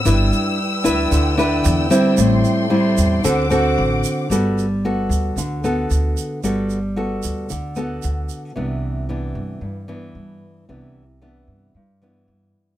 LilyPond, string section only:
\new Staff \with { instrumentName = "String section" } { \time 4/4 \key g \major \tempo 4 = 113 << { <b' e'''>1 | <a' c'''>2 <c'' d'''>2 | r1 | r1 |
r1 | r1 | } \\ { g''1~ | g''2 fis''2 | r1 | r1 |
r1 | r1 | } >> }